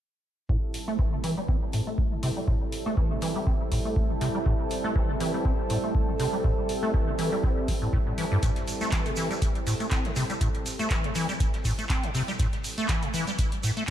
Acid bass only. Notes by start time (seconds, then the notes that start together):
0.49 A2
0.88 A3
0.99 E3
1.13 C3
1.24 E3
1.37 G3
1.49 C4
1.73 A2
1.87 A3
2.12 C3
2.23 C3
2.37 G3
2.48 A2
2.86 A3
2.97 E3
3.11 C3
3.22 E3
3.36 G3
3.47 C4
3.72 A2
3.85 A3
4.10 C3
4.21 C3
4.35 G3
4.46 A2
4.84 A3
4.95 E3
5.09 C3
5.20 E3
5.34 G3
5.45 C4
5.70 A2
5.84 A3
6.08 C3
6.20 C3
6.33 G3
6.44 A2
6.83 A3
6.94 E3
7.08 C3
7.19 E3
7.32 G3
7.44 C4
7.68 C3
7.82 A2
7.93 A2
8.07 A2
8.18 E3
8.32 G2
8.43 A2
8.81 A3
8.92 E3
9.06 C3
9.17 E3
9.31 G3
9.67 A2
9.80 A3
9.91 C4
10.05 C3
10.16 C3
10.30 G3
10.41 A2
10.79 A3
10.91 E3
11.04 C3
11.15 E3
11.29 G3
11.65 A2
11.79 A3
11.90 C4
12.03 C3
12.15 C3
12.28 G3
12.39 A2
12.78 A3
12.89 E3
13.02 C3
13.14 E3
13.27 G3
13.63 A2
13.77 A3